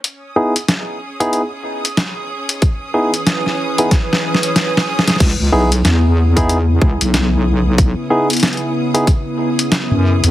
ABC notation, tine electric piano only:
X:1
M:4/4
L:1/16
Q:"Swing 16ths" 1/4=93
K:C#m
V:1 name="Tine electric piano"
z2 [B,DEG] z4 [B,DEG] z8 | z2 [B,DEG] z4 [B,DEG] z8 | z2 [B,DEG] z4 [B,DEG] z8 | z2 [B,DEG] z4 [B,DEG] z8 |]